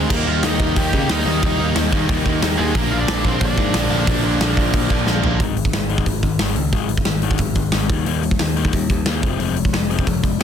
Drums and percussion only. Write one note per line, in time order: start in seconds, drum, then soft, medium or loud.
0.10 kick loud
0.10 crash medium
0.43 snare loud
0.43 open hi-hat medium
0.60 kick medium
0.76 kick loud
0.76 open hi-hat medium
0.93 kick medium
1.09 snare loud
1.09 open hi-hat medium
1.43 kick loud
1.76 snare loud
1.76 open hi-hat medium
1.93 kick medium
2.09 kick loud
2.09 open hi-hat medium
2.26 kick medium
2.42 snare loud
2.42 open hi-hat medium
2.75 kick loud
2.75 open hi-hat medium
3.08 snare loud
3.08 open hi-hat medium
3.25 kick medium
3.41 kick loud
3.41 open hi-hat medium
3.58 kick medium
3.74 snare loud
3.74 open hi-hat medium
4.07 kick loud
4.07 open hi-hat medium
4.41 snare loud
4.41 open hi-hat medium
4.57 kick medium
4.74 kick loud
4.74 open hi-hat medium
4.90 kick medium
5.07 snare medium
5.24 floor tom loud
5.40 kick loud
5.40 open hi-hat medium
5.57 open hi-hat medium
5.65 kick medium
5.73 snare loud
5.73 open hi-hat medium
5.89 open hi-hat soft
5.98 kick medium
6.06 kick medium
6.06 open hi-hat medium
6.23 kick medium
6.23 open hi-hat soft
6.39 snare loud
6.39 open hi-hat medium
6.56 open hi-hat medium
6.72 kick loud
6.72 open hi-hat medium
6.89 open hi-hat medium
6.97 kick medium
7.05 snare loud
7.05 open hi-hat medium
7.22 open hi-hat medium
7.31 kick medium
7.38 kick loud
7.38 open hi-hat medium
7.55 kick medium
7.55 open hi-hat soft
7.72 snare loud
7.72 open hi-hat medium
7.89 kick loud
7.89 open hi-hat medium
8.06 open hi-hat medium
8.23 open hi-hat medium
8.31 kick medium
8.39 snare loud
8.39 open hi-hat medium
8.57 open hi-hat medium
8.65 kick medium
8.73 kick medium
8.73 open hi-hat medium
8.90 kick medium
8.90 open hi-hat soft
9.06 snare loud
9.06 open hi-hat medium
9.23 kick loud
9.23 open hi-hat medium
9.40 open hi-hat medium
9.56 open hi-hat medium
9.65 kick medium
9.74 snare loud
9.74 open hi-hat medium
9.91 open hi-hat medium
9.99 kick medium
10.07 kick medium
10.07 open hi-hat medium
10.24 kick medium
10.24 open hi-hat medium